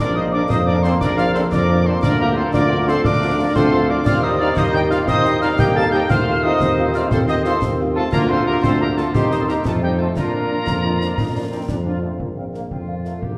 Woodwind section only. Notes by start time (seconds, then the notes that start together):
0.00 A#4
0.16 C5
0.34 A#4
0.51 C5
0.69 A#4
0.85 A4
1.02 A#4
1.18 D5
1.35 A4
1.52 A#4
1.86 A4
2.02 A#4
2.20 G4
2.36 A4
2.54 A#4
2.88 A4
3.05 A#4
3.55 A4
3.89 A#4
4.05 D5
4.23 C5
4.38 D5
4.56 C5
4.74 D#5
4.90 D5
5.08 C5
5.42 D5
5.58 D#5
5.76 F5
5.93 D#5
6.10 C5
6.45 C5
6.95 D5
7.12 A4
7.27 C5
7.44 A4
7.95 F4
8.12 F4
8.30 A4
8.47 G4
8.64 A4
8.81 G4
8.97 F4
9.15 G4
9.32 C5
9.41 A4
9.49 G4
9.65 F4
9.82 D#4
10.00 F4
10.18 F4
12.71 F4
13.22 G4